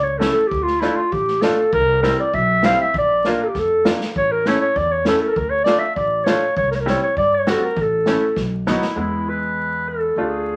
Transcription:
Already playing: upright bass C#2
0.04 clarinet C#5
0.18 upright piano A3 C#4 E4, clarinet A4, snare
0.32 clarinet A4
0.48 upright bass D2, clarinet G4, kick
0.63 clarinet F4
0.67 snare
0.80 upright piano A3 D4 F4, clarinet E4, snare
0.96 clarinet F4
1.12 upright bass A1, clarinet G4, kick
1.28 snare
1.41 upright piano A3 D4 F4, clarinet A4, snare
1.73 upright bass C2, clarinet A#4, kick
2.02 upright piano G3 C4 E4, clarinet A#4, snare
2.20 clarinet D5
2.34 upright bass B1, clarinet E5, kick
2.63 upright piano G3 C4 E4, clarinet F5, snare
2.81 clarinet E5
2.94 upright bass A#1, clarinet D5, kick
3.24 upright piano A#3 D4 F4, clarinet A#4, snare
3.43 clarinet A4
3.48 clarinet G4
3.54 upright bass F2, kick, snare
3.59 clarinet A4
3.85 upright piano A#3 D4 F4, snare
4.01 snare
4.16 upright bass A1, clarinet C#5, kick
4.32 clarinet A#4
4.45 upright piano A3 C#4 E4, clarinet C#5, snare
4.61 clarinet C#5
4.76 upright bass E2, clarinet D5, kick
4.92 clarinet C#5
5.05 upright piano A3 C#4 E4, clarinet A4, snare
5.22 clarinet A4
5.27 clarinet A4 A#4
5.35 upright bass D2, clarinet A#4, kick
5.50 clarinet C#5
5.64 upright piano A3 D4 F4, clarinet D5, snare
5.79 clarinet E5
5.96 upright bass A1, clarinet D5, kick
6.24 upright piano A3 D4 F4, clarinet C#5, snare
6.56 upright bass C2, clarinet C#5, kick
6.71 clarinet A#4, snare
6.75 clarinet C#5
6.81 clarinet A#4
6.86 upright piano G3 C4 E4, clarinet C#5, snare
7.03 clarinet C#5
7.17 upright bass G2, clarinet D5, kick
7.35 clarinet C#5
7.47 upright piano G3 C4 F#4, clarinet A4, snare
7.65 clarinet A#4
7.76 upright bass A1, kick
7.81 clarinet A4
8.06 upright piano A3 C#4 E4, snare
8.36 upright bass B1, kick, snare
8.67 upright piano F#3 B3 D#4, clarinet E4, snare
8.82 snare
8.96 upright bass E2, upright piano G#3 B3 E4
9.00 clarinet E4
9.29 clarinet B4
9.88 clarinet A4
10.16 upright bass D2, upright piano A3 D4 F4, clarinet G#4

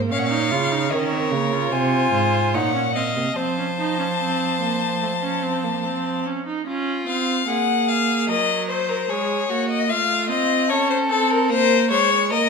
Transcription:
Already playing: cello G#2, viola A#3
0.10 cello A#2, viola C#4, violin C#5 F5
0.19 violin F#5
0.26 violin F5
0.31 viola D#4
0.51 cello C#3, viola F4
0.72 viola D#4
0.91 cello D#3, viola C#4, violin A#4 C#5
0.99 violin D#5
1.07 violin C#5
1.12 viola C4
1.32 cello C#3, viola A#3
1.52 viola F4
1.72 cello C3, violin C5 G#5
2.13 cello G#2
2.54 cello A#2, viola D#4, violin C#5 F#5
2.75 viola C#4
2.95 viola C4, violin D#5 F5
3.16 cello C3, viola A#3
3.36 cello F3, viola C4, violin C5 A5
3.58 viola C#4
3.78 viola D#4
3.99 viola C#4
4.19 viola C4
4.61 viola A#3
5.02 viola A3
5.23 viola C#4
5.43 viola C4
5.64 viola A#3
5.85 viola C4
6.26 viola C#4
6.47 viola D#4
6.67 viola C#4, violin F4
7.07 viola C4, violin F5
7.47 viola A#3, violin G#4 F#5
7.88 violin F5
8.28 viola F#3, violin A#4 D#5
8.69 violin C5
8.89 violin A#4
9.09 viola G#3, violin G#4 C#5
9.50 viola A#3, violin F#4
9.69 violin D#5
9.89 viola A3, violin F4 F5
10.29 viola C4, violin D#5
10.69 viola C#4, violin A4 C#5
10.90 violin C5
11.09 viola C4, violin A4
11.30 violin A#4
11.50 viola A#3, violin A#4 C5
11.90 viola G#3, violin C5 C#5
12.11 violin C#5
12.31 viola A#3, violin A#4 D#5

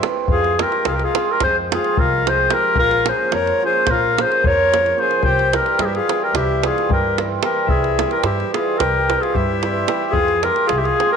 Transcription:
0.03 hammered dulcimer E3 G3 C4 E4, davul high
0.28 upright bass F2, accordion F4, clarinet G#4, davul low
0.44 davul high
0.59 hammered dulcimer F3 G#3 C4 F4, accordion G4, clarinet A#4, davul high
0.72 davul high
0.85 upright bass C2, accordion F4, clarinet G#4, davul high
0.93 accordion G4, clarinet A#4
1.00 clarinet G#4, davul high
1.04 accordion F4
1.14 hammered dulcimer F3 G#3 C4 F4, davul high
1.30 accordion G4, clarinet A#4
1.40 upright bass F2, accordion G#4, clarinet C5, davul high, davul low
1.71 hammered dulcimer F3 G#3 C4 F4, accordion F4, clarinet G#4, davul high
1.84 davul high
1.97 upright bass C2, accordion F4, clarinet A#4, davul low
2.25 hammered dulcimer F3 G#3 C4 F4, clarinet C5, davul high
2.30 accordion G#4
2.49 hammered dulcimer F3 G#3 C4 F4, clarinet A#4, davul high
2.54 accordion G4
2.75 upright bass A#1, accordion F4, clarinet A#4, davul low
2.91 davul high
3.05 hammered dulcimer F3 A#3 C#4 F4, clarinet C5, davul high
3.09 accordion G#4
3.31 upright bass F2, accordion A#4, clarinet C#5, davul high
3.47 davul high
3.60 hammered dulcimer F3 A#3 C#4 F4
3.65 accordion G#4, clarinet C5
3.87 upright bass A#1, clarinet A#4, davul high, davul low
3.92 accordion F4
4.17 hammered dulcimer F3 A#3 C#4 F4, clarinet C5, davul high
4.23 accordion G#4
4.32 davul high
4.44 upright bass F2, clarinet C#5, davul low
4.48 accordion A#4
4.71 hammered dulcimer F3 A#3 C#4 F4, davul high
4.86 davul high
4.97 hammered dulcimer F3 A#3 C#4 F4, clarinet C5
5.01 accordion G#4
5.11 davul high
5.22 upright bass C2, accordion G4, clarinet C5, davul low
5.39 davul high
5.52 hammered dulcimer E3 G3 C4 E4, accordion G4, clarinet A#4, davul high
5.66 davul high
5.78 upright bass G2, accordion E4, clarinet G#4, davul high
5.86 accordion E4, clarinet G4
5.95 accordion F4, clarinet G#4, davul high
6.07 hammered dulcimer E3 G3 C4 E4, davul high
6.22 accordion G4, clarinet A#4
6.33 upright bass C2, accordion E4, clarinet G4, davul high, davul low
6.63 hammered dulcimer E3 G3 C4 E4, accordion F4, clarinet G#4, davul high
6.78 davul high
6.89 upright bass G2, accordion G4, clarinet A#4, davul low
7.17 hammered dulcimer E3 G3 C4 E4, davul high
7.42 hammered dulcimer E3 G3 C4 E4, accordion G4, clarinet A#4, davul high
7.66 upright bass C2, accordion E4, clarinet G#4, davul low
7.84 davul high
7.98 hammered dulcimer E3 G3 C4 E4, davul high
8.10 accordion G4, clarinet A#4, davul high
8.23 upright bass G2, accordion E4, clarinet G4, davul high
8.40 davul high
8.53 hammered dulcimer E3 G3 C4 E4, accordion F4, clarinet G#4, davul high
8.78 upright bass C2, accordion G4, clarinet A#4, davul high, davul low
9.10 hammered dulcimer E3 G3 C4 E4, davul high
9.21 accordion F4, clarinet G#4, davul high
9.35 upright bass G2, accordion E4, clarinet G4, davul low
9.63 hammered dulcimer E3 G3 C4 E4, davul high
9.87 hammered dulcimer E3 G3 C4 E4, davul high
10.12 upright bass F2, accordion F4, clarinet G#4, davul low
10.28 davul high
10.41 hammered dulcimer F3 G#3 C4 F4, accordion G4, clarinet A#4, davul high
10.56 davul high
10.66 upright bass C2, accordion F4, clarinet G#4, davul high
10.76 accordion E4, clarinet G4
10.83 accordion F4, clarinet G#4, davul high
10.99 hammered dulcimer F3 G#3 C4 F4, davul high
11.10 accordion G4, clarinet A#4

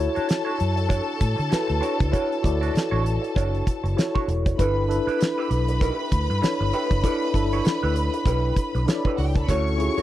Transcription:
Already playing: tine electric piano E4 F#4, string section A4 A5
0.00 tine electric piano A4 C#5
0.15 clean electric guitar D4 F#4 C#5, muted fingered electric bass stroke, closed hi-hat
0.27 muted clean electric guitar stroke, snare, closed hi-hat
0.45 clean electric guitar D4 F#4 C#5
0.58 fingered electric bass F#2, muted clean electric guitar stroke, closed hi-hat
0.76 muted clean electric guitar stroke, closed hi-hat
0.88 clean electric guitar D4 F#4 C#5, kick, closed hi-hat
1.19 fingered electric bass A2, muted clean electric guitar stroke, kick, closed hi-hat
1.37 fingered electric bass D3, muted clean electric guitar stroke, closed hi-hat
1.50 tine electric piano E4 F#4 A4 B4, muted clean electric guitar stroke, muted fingered electric bass stroke, snare, closed hi-hat
1.67 fingered electric bass D2, muted clean electric guitar stroke, closed hi-hat
1.81 clean electric guitar D4 F#4 C#5, closed hi-hat
1.98 fingered electric bass C#2, muted clean electric guitar stroke, kick, closed hi-hat
2.11 clean electric guitar D4 F#4 C#5, tine electric piano E4 F#4 A4 C#5, kick, closed hi-hat
2.32 closed hi-hat
2.42 fingered electric bass D2, tine electric piano E4 F#4 A4 D5, muted clean electric guitar stroke, kick, closed hi-hat
2.61 clean electric guitar D4 F#4 D5, closed hi-hat
2.74 muted clean electric guitar stroke, muted fingered electric bass stroke, snare, closed hi-hat
2.91 fingered electric bass A1, clean electric guitar D4 F#4 C#5
3.04 muted clean electric guitar stroke, closed hi-hat
3.22 muted clean electric guitar stroke, closed hi-hat
3.36 fingered electric bass F#1, clean electric guitar D4 F#4 C#5, kick, closed hi-hat
3.55 closed hi-hat
3.66 muted clean electric guitar stroke, kick, closed hi-hat
3.84 fingered electric bass F#1, muted clean electric guitar stroke, closed hi-hat
3.96 tine electric piano E4 F#4 A4 C#5, muted clean electric guitar stroke, snare, closed hi-hat
4.15 clean electric guitar D4 F#4 C#5, kick
4.28 fingered electric bass E1, muted clean electric guitar stroke, closed hi-hat
4.46 muted clean electric guitar stroke, kick, closed hi-hat
4.57 fingered electric bass G1, tine electric piano D4 E4 A4 B4, clean electric guitar E4 G4 B4, string section B4 B5, kick, closed hi-hat
4.88 tine electric piano D4 E4 A4 B4, muted clean electric guitar stroke, closed hi-hat
5.07 clean electric guitar E4 G4 B4, muted fingered electric bass stroke, closed hi-hat
5.19 muted clean electric guitar stroke, snare, closed hi-hat
5.38 clean electric guitar E4 G4 B4
5.50 fingered electric bass B1, muted clean electric guitar stroke, closed hi-hat
5.68 muted clean electric guitar stroke, closed hi-hat
5.81 clean electric guitar D#4 F#4 A#4, kick, closed hi-hat
5.93 clean electric guitar E4 G4 B4
6.12 fingered electric bass D2, muted clean electric guitar stroke, kick, closed hi-hat
6.30 fingered electric bass G2, muted clean electric guitar stroke, closed hi-hat
6.42 tine electric piano D4 E4 A4 C#5, muted clean electric guitar stroke, muted fingered electric bass stroke, snare, closed hi-hat
6.60 fingered electric bass G1, muted clean electric guitar stroke
6.73 clean electric guitar E4 G4 B4, closed hi-hat
6.91 fingered electric bass F#1, muted clean electric guitar stroke, kick, closed hi-hat
7.02 tine electric piano D4 E4 A4 D5, clean electric guitar E4 G4 B4, kick, closed hi-hat
7.22 closed hi-hat
7.34 fingered electric bass G1, tine electric piano D4 E4 A4 B4, muted clean electric guitar stroke, kick, closed hi-hat
7.53 clean electric guitar E4 G4 C#5, closed hi-hat
7.65 muted clean electric guitar stroke, muted fingered electric bass stroke, snare, closed hi-hat
7.83 fingered electric bass D2, clean electric guitar E4 G4 B4
7.96 muted clean electric guitar stroke, closed hi-hat
8.14 muted clean electric guitar stroke, closed hi-hat
8.26 fingered electric bass B1, clean electric guitar E4 G4 B4, kick, closed hi-hat
8.56 kick, closed hi-hat
8.75 fingered electric bass B1, muted clean electric guitar stroke, closed hi-hat
8.86 tine electric piano D4 E4 A4 C#5, muted clean electric guitar stroke, snare, closed hi-hat
8.95 tine electric piano D5
9.05 clean electric guitar E4 G4 B4, kick
9.17 fingered electric bass C#2, string section F#4 F#5, muted clean electric guitar stroke, open hi-hat
9.27 string section G4 G5
9.35 string section A4 A5, muted clean electric guitar stroke, kick, closed hi-hat
9.41 string section B4 B5
9.47 fingered electric bass D2, tine electric piano C#4 E4 F#4 A4, clean electric guitar F#4 A4 C#5, string section C#5 C#6, kick, closed hi-hat
9.67 closed hi-hat
9.77 tine electric piano C#4 E4 F4 G#4, muted clean electric guitar stroke, closed hi-hat
9.85 tine electric piano F#4
9.98 clean electric guitar F#4 A4 C#5, muted fingered electric bass stroke, closed hi-hat

